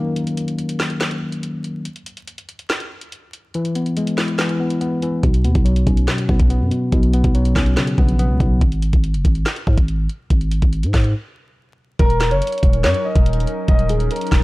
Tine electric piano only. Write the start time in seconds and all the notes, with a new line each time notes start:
Already playing: D#3 F#3 A#3 C#4
3.55 E3
3.76 B3
3.97 G#3
4.18 E4
4.38 E3
4.60 B3
4.81 B3
5.03 E3
5.23 B2
5.44 B3
5.65 F#3
5.87 C#4
6.08 B2
6.29 B3
6.50 B3
6.71 B2
6.92 B2
7.13 B3
7.35 F#3
7.56 C#4
7.77 C#3
7.99 B3
8.19 B3
8.41 B2